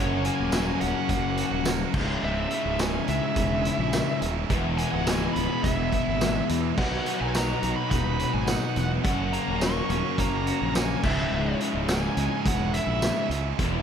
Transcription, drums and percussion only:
0.25 closed hi-hat medium
0.52 snare loud
0.52 closed hi-hat loud
0.52 tambourine loud
0.81 closed hi-hat medium
1.09 kick medium
1.09 closed hi-hat medium
1.37 closed hi-hat medium
1.65 snare loud
1.65 closed hi-hat loud
1.65 tambourine loud
1.94 kick loud
1.94 crash loud
2.51 closed hi-hat medium
2.79 snare loud
2.79 closed hi-hat loud
2.79 tambourine loud
3.08 closed hi-hat medium
3.36 kick medium
3.36 closed hi-hat loud
3.65 closed hi-hat medium
3.93 snare loud
3.93 closed hi-hat loud
3.93 tambourine loud
4.22 closed hi-hat medium
4.50 kick loud
4.50 closed hi-hat medium
4.78 closed hi-hat medium
5.07 snare loud
5.07 closed hi-hat loud
5.07 tambourine loud
5.36 closed hi-hat medium
5.64 kick medium
5.64 closed hi-hat loud
5.92 kick medium
5.92 closed hi-hat medium
6.21 snare loud
6.21 closed hi-hat loud
6.21 tambourine loud
6.49 closed hi-hat medium
6.78 kick loud
6.78 crash loud
7.06 closed hi-hat medium
7.35 snare loud
7.35 closed hi-hat loud
7.35 tambourine loud
7.63 closed hi-hat medium
7.91 kick medium
7.91 closed hi-hat loud
8.20 closed hi-hat medium
8.47 snare loud
8.47 closed hi-hat loud
8.47 tambourine loud
8.76 closed hi-hat medium
9.05 kick loud
9.05 closed hi-hat loud
9.33 closed hi-hat medium
9.61 snare loud
9.61 closed hi-hat loud
9.61 tambourine loud
9.90 closed hi-hat medium
10.18 kick medium
10.18 closed hi-hat loud
10.47 closed hi-hat medium
10.75 snare loud
10.75 closed hi-hat loud
10.75 tambourine loud
11.03 kick loud
11.03 crash loud
11.61 closed hi-hat medium
11.88 snare loud
11.88 closed hi-hat loud
11.88 tambourine loud
12.17 closed hi-hat loud
12.46 kick loud
12.46 closed hi-hat loud
12.74 closed hi-hat medium
13.02 snare loud
13.02 closed hi-hat loud
13.02 tambourine loud
13.31 closed hi-hat medium
13.59 kick loud
13.59 closed hi-hat loud

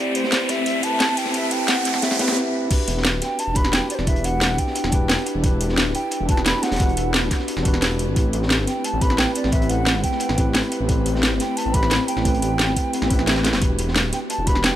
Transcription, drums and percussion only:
0.15 closed hi-hat medium
0.24 snare soft
0.32 snare loud
0.32 closed hi-hat medium
0.49 snare soft
0.49 closed hi-hat medium
0.49 closed hi-hat loud
0.66 closed hi-hat medium
0.83 kick medium
0.83 closed hi-hat medium
1.00 snare loud
1.00 closed hi-hat medium
1.09 kick loud
1.17 closed hi-hat loud
1.17 closed hi-hat medium
1.26 snare soft
1.34 kick loud
1.34 closed hi-hat medium
1.44 closed hi-hat soft
1.51 closed hi-hat loud
1.51 closed hi-hat medium
1.68 snare loud
1.68 closed hi-hat medium
1.85 snare soft
1.85 closed hi-hat medium
1.94 snare soft
1.94 snare medium
2.02 snare loud
2.02 closed hi-hat medium
2.11 snare loud
2.11 snare soft
2.11 closed hi-hat medium
2.19 kick loud
2.19 snare loud
2.19 closed hi-hat loud
2.19 closed hi-hat medium
2.27 snare medium
2.27 closed hi-hat medium
2.32 snare medium
2.32 closed hi-hat medium
2.71 kick loud
2.71 closed hi-hat medium
2.71 crash loud
2.88 closed hi-hat loud
2.88 closed hi-hat medium
2.97 snare soft
3.05 snare loud
3.05 closed hi-hat medium
3.22 snare soft
3.22 closed hi-hat loud
3.22 closed hi-hat medium
3.39 closed hi-hat medium
3.55 kick loud
3.55 closed hi-hat medium
3.65 snare medium
3.73 snare loud
3.73 closed hi-hat medium
3.90 closed hi-hat loud
3.90 closed hi-hat medium
3.99 snare soft
4.07 kick loud
4.07 closed hi-hat medium
4.16 closed hi-hat soft
4.24 closed hi-hat medium
4.41 snare loud
4.41 closed hi-hat medium
4.58 kick medium
4.58 closed hi-hat medium
4.67 snare soft
4.75 closed hi-hat medium
4.84 snare soft
4.84 snare medium
4.92 kick loud
4.92 closed hi-hat medium
5.09 snare loud
5.09 closed hi-hat medium
5.19 closed hi-hat soft
5.26 closed hi-hat medium
5.44 kick loud
5.44 closed hi-hat medium
5.61 closed hi-hat medium
5.69 snare soft
5.78 snare loud
5.78 closed hi-hat medium
5.95 closed hi-hat medium
6.11 closed hi-hat medium
6.29 kick loud
6.29 closed hi-hat medium
6.37 snare medium
6.46 snare loud
6.46 closed hi-hat medium
6.63 snare loud
6.63 closed hi-hat loud
6.63 closed hi-hat medium
6.72 snare medium
6.72 snare soft
6.72 closed hi-hat medium
6.76 snare medium
6.76 closed hi-hat medium
6.79 kick loud
6.79 closed hi-hat medium
6.89 closed hi-hat soft
6.97 closed hi-hat medium
7.14 snare loud
7.14 closed hi-hat medium
7.31 kick medium
7.31 snare soft
7.31 closed hi-hat medium
7.39 snare soft
7.48 closed hi-hat medium
7.57 snare soft
7.65 kick loud
7.65 closed hi-hat medium
7.74 snare medium
7.82 snare loud
7.82 closed hi-hat medium
7.91 closed hi-hat soft
7.99 closed hi-hat medium
8.16 kick loud
8.16 closed hi-hat medium
8.33 closed hi-hat medium
8.43 snare soft
8.50 snare loud
8.50 closed hi-hat medium
8.67 snare soft
8.67 closed hi-hat medium
8.84 closed hi-hat medium
9.01 kick loud
9.01 closed hi-hat medium
9.10 snare medium
9.18 snare loud
9.18 closed hi-hat medium
9.35 closed hi-hat medium
9.44 snare soft
9.52 kick loud
9.52 closed hi-hat medium
9.62 closed hi-hat soft
9.70 closed hi-hat medium
9.86 snare loud
9.86 closed hi-hat medium
10.04 kick medium
10.04 closed hi-hat medium
10.12 snare soft
10.20 closed hi-hat medium
10.29 snare soft
10.38 kick loud
10.38 closed hi-hat medium
10.54 snare loud
10.54 closed hi-hat medium
10.63 closed hi-hat soft
10.72 closed hi-hat medium
10.89 kick loud
10.89 closed hi-hat medium
11.06 closed hi-hat medium
11.15 snare soft
11.23 snare loud
11.23 closed hi-hat medium
11.40 snare soft
11.40 closed hi-hat loud
11.40 closed hi-hat medium
11.57 closed hi-hat medium
11.74 kick loud
11.74 closed hi-hat medium
11.83 snare medium
11.91 snare loud
11.91 closed hi-hat medium
12.08 closed hi-hat medium
12.17 snare soft
12.25 kick loud
12.25 closed hi-hat medium
12.34 closed hi-hat soft
12.42 closed hi-hat medium
12.59 snare loud
12.59 closed hi-hat medium
12.76 kick medium
12.76 closed hi-hat medium
12.93 closed hi-hat medium
13.02 snare medium
13.02 snare soft
13.10 kick loud
13.10 closed hi-hat medium
13.19 snare medium
13.27 snare loud
13.27 closed hi-hat medium
13.36 snare medium
13.36 closed hi-hat soft
13.44 snare medium
13.44 snare loud
13.44 closed hi-hat medium
13.53 snare medium
13.53 closed hi-hat medium
13.62 kick loud
13.62 closed hi-hat medium
13.79 closed hi-hat medium
13.88 snare soft
13.96 snare loud
13.96 closed hi-hat medium
14.12 snare soft
14.12 closed hi-hat medium
14.30 closed hi-hat medium
14.47 kick loud
14.47 closed hi-hat medium
14.55 snare medium
14.63 snare loud
14.63 closed hi-hat medium

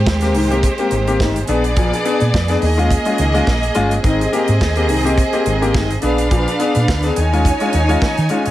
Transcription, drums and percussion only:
0.07 kick loud
0.07 snare loud
0.21 snare soft
0.21 closed hi-hat soft
0.34 open hi-hat medium
0.52 closed hi-hat soft
0.63 kick medium
0.63 closed hi-hat medium
0.78 closed hi-hat soft
0.91 closed hi-hat medium
1.07 closed hi-hat soft
1.20 kick loud
1.20 snare medium
1.36 closed hi-hat soft
1.47 closed hi-hat medium
1.64 closed hi-hat soft
1.76 kick loud
1.76 closed hi-hat medium
1.93 closed hi-hat soft
2.05 closed hi-hat medium
2.20 closed hi-hat soft
2.34 kick loud
2.34 snare loud
2.48 snare soft
2.48 closed hi-hat medium
2.62 open hi-hat medium
2.79 closed hi-hat soft
2.90 kick medium
2.90 closed hi-hat medium
3.05 closed hi-hat soft
3.18 closed hi-hat medium
3.35 closed hi-hat soft
3.47 kick loud
3.47 snare medium
3.63 closed hi-hat soft
3.75 closed hi-hat medium
3.91 closed hi-hat medium
4.04 kick loud
4.04 closed hi-hat medium
4.21 closed hi-hat medium
4.33 closed hi-hat medium
4.48 closed hi-hat soft
4.61 kick loud
4.61 snare loud
4.76 closed hi-hat soft
4.89 open hi-hat medium
5.06 closed hi-hat soft
5.18 kick medium
5.18 closed hi-hat medium
5.33 closed hi-hat soft
5.46 closed hi-hat medium
5.62 closed hi-hat soft
5.74 kick loud
5.74 snare medium
5.91 closed hi-hat soft
6.02 closed hi-hat medium
6.18 closed hi-hat medium
6.31 kick medium
6.31 closed hi-hat medium
6.48 closed hi-hat soft
6.60 closed hi-hat medium
6.75 closed hi-hat soft
6.88 kick loud
6.88 snare loud
7.03 snare soft
7.03 closed hi-hat medium
7.16 closed hi-hat medium
7.34 closed hi-hat soft
7.45 kick medium
7.45 closed hi-hat medium
7.60 closed hi-hat soft
7.73 closed hi-hat medium
7.89 closed hi-hat soft
8.02 kick loud
8.02 snare medium
8.17 closed hi-hat soft
8.29 closed hi-hat medium
8.46 closed hi-hat medium

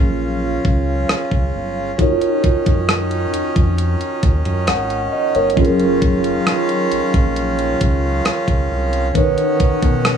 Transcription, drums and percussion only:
0.65 kick medium
1.09 cross-stick loud
1.31 kick medium
1.99 kick loud
1.99 closed hi-hat medium
2.21 closed hi-hat soft
2.44 kick medium
2.44 closed hi-hat medium
2.66 kick medium
2.66 closed hi-hat medium
2.89 cross-stick loud
2.89 closed hi-hat medium
3.11 closed hi-hat soft
3.34 closed hi-hat medium
3.56 kick medium
3.56 closed hi-hat soft
3.78 closed hi-hat medium
4.01 closed hi-hat soft
4.23 kick medium
4.23 closed hi-hat medium
4.45 closed hi-hat soft
4.67 cross-stick loud
4.67 closed hi-hat medium
4.90 closed hi-hat soft
5.35 closed hi-hat soft
5.50 closed hi-hat soft
5.57 kick loud
5.65 closed hi-hat soft
5.80 closed hi-hat soft
6.02 kick medium
6.02 closed hi-hat medium
6.24 closed hi-hat medium
6.47 cross-stick loud
6.47 closed hi-hat medium
6.69 closed hi-hat soft
6.92 closed hi-hat medium
7.14 kick medium
7.14 closed hi-hat soft
7.36 closed hi-hat medium
7.59 closed hi-hat soft
7.81 kick medium
7.81 closed hi-hat medium
8.25 cross-stick loud
8.25 closed hi-hat medium
8.48 kick medium
8.48 closed hi-hat soft
8.93 closed hi-hat medium
9.15 kick loud
9.15 closed hi-hat medium
9.38 closed hi-hat medium
9.60 kick medium
9.60 closed hi-hat medium
9.82 kick medium
9.82 closed hi-hat medium
10.05 cross-stick loud
10.05 closed hi-hat medium

